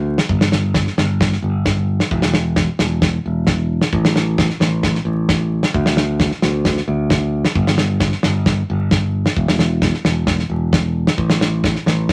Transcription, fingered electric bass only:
0.00 0.18 D2 medium
0.29 0.85 G1 loud
0.98 1.35 G1 loud
1.42 1.99 G1 medium
2.11 2.67 E1 loud
2.80 3.17 E1 loud
3.26 3.81 E1 medium
3.93 4.49 A1 loud
4.60 4.98 A1 medium
5.05 5.61 A1 medium
5.74 6.30 D2 loud
6.42 6.80 D2 medium
6.88 7.43 D2 medium
7.55 8.11 G1 loud
8.24 8.61 G1 loud
8.70 9.25 G1 loud
9.37 9.93 E1 loud
10.05 10.42 E1 loud
10.50 11.06 E1 medium
11.18 11.74 A1 loud
11.86 12.13 A1 medium

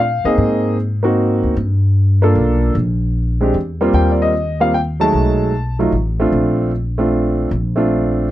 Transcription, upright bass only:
0.00 0.20 A#2 medium
0.24 0.37 D#2 medium
0.38 1.40 G#2 medium
1.43 1.56 D2 medium
1.57 2.32 G2 medium
2.35 2.73 B1 medium
2.75 3.51 A#1 medium
3.54 3.92 E2 medium
3.93 5.09 D#2 medium
5.13 5.89 B1 medium
5.92 6.29 A1 medium
6.32 7.47 A#1 medium
7.51 8.27 A#1 medium

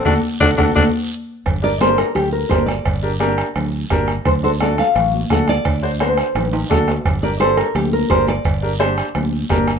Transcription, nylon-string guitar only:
1.64 1.81 D5 loud
1.81 1.97 C5 loud
1.98 2.15 A#4 medium
2.15 2.32 G4 medium
2.32 2.51 A#4 medium
2.49 2.66 C5 medium
2.66 3.33 D5 medium
4.26 4.31 C5 medium
4.44 4.49 C5 medium
4.62 4.78 D5 medium
4.79 5.11 F5 medium
5.32 5.49 F#5 loud
5.49 5.97 D5 loud
6.02 6.51 C5 medium
6.51 6.67 A#4 medium
7.23 7.39 D5 medium
7.40 7.56 C5 loud
7.57 7.75 A#4 medium
7.75 7.93 G4 medium
7.93 8.09 A#4 medium
8.10 8.28 C5 medium
8.29 8.94 D5 medium

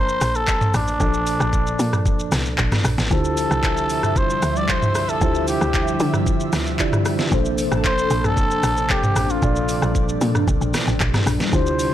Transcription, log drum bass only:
0.22 0.70 A#1 loud
0.74 0.98 A1 loud
1.00 1.36 A#1 loud
1.40 1.75 A#1 loud
1.79 2.28 A#2 loud
2.32 2.56 C2 loud
2.58 2.71 A#1 loud
2.84 2.97 A#1 loud
2.98 3.10 A1 medium
3.11 3.47 D2 loud
3.51 3.91 C2 medium
3.90 4.26 D2 loud
4.42 4.97 D2 medium
4.95 5.19 C2 loud
5.21 5.57 D2 loud
5.62 5.97 D2 loud
6.00 6.49 D3 loud
6.53 6.77 D2 loud
7.32 7.68 A#1 loud
7.72 8.07 A1 medium
8.11 8.47 A#1 loud
8.63 9.12 A#1 loud
9.16 9.40 A1 medium
9.42 9.78 A#1 loud
9.82 10.17 A#1 loud
10.21 10.45 A#2 loud
10.48 10.60 C2 loud
10.61 10.73 A#1 medium
10.88 10.99 A1 medium
11.01 11.13 A#1 medium
11.26 11.39 A#1 medium
11.53 11.89 D2 loud

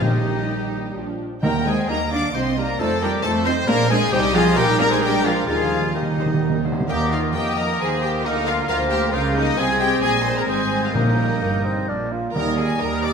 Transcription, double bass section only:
0.02 0.95 A#1 medium
0.97 1.22 A#1 medium
1.43 1.83 D#2 medium
1.89 2.29 D#2 medium
2.35 2.74 C2 medium
2.79 3.19 F2 medium
3.24 3.63 F2 medium
3.68 4.07 A#1 loud
4.12 4.54 C2 loud
4.57 5.48 A#1 loud
5.48 6.67 D#2 medium
6.89 7.32 D#2 medium
7.35 7.80 F2 medium
7.81 8.24 D#2 medium
8.25 8.68 D2 loud
8.69 9.13 D2 loud
9.13 9.58 C#2 medium
9.58 10.02 C2 loud
10.03 10.47 A#1 medium
10.48 10.94 G#1 medium
10.95 11.41 A#1 medium
11.42 11.88 G1 medium
11.89 12.34 A#1 medium
12.36 12.76 D#2 medium
12.81 13.13 D#2 medium

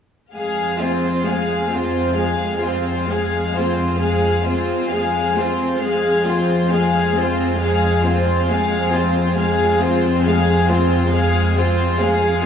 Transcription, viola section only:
0.35 0.78 G#3 soft
0.81 1.27 C4 soft
1.26 1.72 G#3 soft
1.73 2.18 C4 soft
2.19 2.61 G#3 soft
2.65 3.11 C4 soft
3.11 3.57 G#3 soft
3.56 4.02 C4 soft
4.03 4.44 G#3 soft
4.47 4.92 C4 soft
4.92 5.37 G#3 soft
5.38 5.83 C4 soft
5.84 6.25 G#3 soft
6.28 6.72 C4 soft
6.71 7.16 G#3 soft
7.15 7.60 C4 soft
7.60 8.02 G#3 soft
8.04 8.49 C4 soft
8.50 8.94 G#3 soft
8.94 9.38 C4 soft
9.39 9.79 G#3 soft
9.82 10.26 C4 soft
10.27 10.70 G#3 soft
10.70 11.14 C4 soft
11.13 11.54 G#3 soft
11.58 12.01 C4 soft
12.01 12.44 G#3 soft

